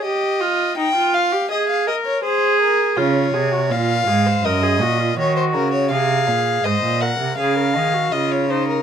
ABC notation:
X:1
M:4/4
L:1/16
Q:1/4=82
K:Db
V:1 name="Violin"
e4 =g2 f2 e f e d c2 B2 | d4 f4 e4 d c B d | f4 e2 g2 f4 e d c B |]
V:2 name="Viola"
=G2 F2 E F2 G A2 B2 A4 | F2 A G F2 A c B A G F G4 | A4 c2 B2 A B A G F2 E2 |]
V:3 name="Cello" clef=bass
z16 | D,2 C,2 B,,2 A,,2 G,,2 B,,2 E,2 D,2 | C,2 B,,2 A,, B,,2 C, D,2 E,2 D,4 |]